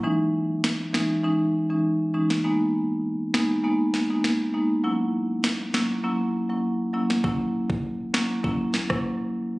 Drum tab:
SD |----o-o--------o|------o---o-o---|----o-o--------o|------o---or----|
BD |----------------|----------------|----------------|o--o----o--o----|